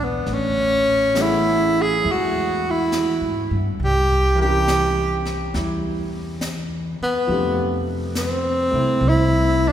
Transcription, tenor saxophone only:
0.04 0.35 B3 medium
0.33 1.23 C#4 medium
1.22 1.83 E4 medium
1.82 2.13 G#4 medium
2.11 2.72 F#4 medium
2.70 3.55 E4 medium
3.84 4.37 G4 loud
4.42 5.23 G4 loud
7.03 7.84 B3 medium
8.18 9.10 C4 loud
9.09 9.70 E4 loud
9.68 9.72 D4 medium

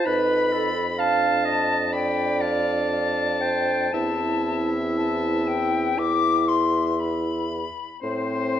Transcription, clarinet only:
0.06 0.54 B4 loud
0.53 0.85 A4 loud
0.98 1.46 F5 loud
1.45 1.92 D#5 loud
1.92 3.42 D5 loud
3.41 3.93 C5 loud
3.93 7.48 E4 medium
8.53 8.60 A4 medium

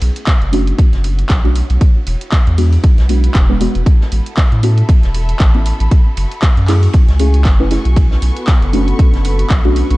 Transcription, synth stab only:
0.52 1.41 A3 medium
0.52 1.41 C#4 medium
0.52 1.41 D4 medium
0.52 1.41 F#4 medium
1.44 1.80 A3 medium
1.44 1.80 C#4 medium
1.44 1.80 D4 medium
1.44 1.80 F#4 medium
2.58 3.06 G#3 medium
2.58 3.07 B3 medium
2.58 3.07 D4 medium
2.58 3.07 F#4 medium
3.09 3.46 G#3 medium
3.09 3.46 B3 medium
3.09 3.46 D4 medium
3.09 3.46 F#4 medium
3.49 3.58 G#3 medium
3.49 3.58 B3 medium
3.49 3.58 D4 medium
3.49 3.58 B4 medium
3.60 3.75 G#3 medium
3.60 3.75 B3 medium
3.60 3.75 D4 medium
3.60 3.76 F#4 medium
4.63 5.51 B3 medium
4.63 5.51 C#4 medium
4.63 5.51 E4 medium
4.63 5.51 F#4 medium
5.54 5.90 B3 medium
5.54 5.90 C#4 medium
5.54 5.90 E4 medium
5.54 5.90 F#4 medium
6.68 7.17 A3 medium
6.68 7.17 C#4 medium
6.68 7.17 E4 medium
6.68 7.17 G#4 loud
7.19 7.56 A3 medium
7.19 7.56 C#4 medium
7.19 7.56 E4 medium
7.19 7.56 G#4 medium
7.59 7.68 A3 medium
7.59 7.68 C#4 medium
7.59 7.68 E4 medium
7.59 7.68 B4 medium
7.71 7.86 A3 medium
7.71 7.86 C#4 medium
7.71 7.86 E4 medium
7.71 7.86 G#4 medium
8.73 9.61 A3 medium
8.73 9.61 C#4 medium
8.73 9.61 D4 medium
8.73 9.62 F#4 medium
9.64 9.97 A3 medium
9.64 9.97 C#4 medium
9.64 9.97 D4 medium
9.64 9.97 F#4 medium

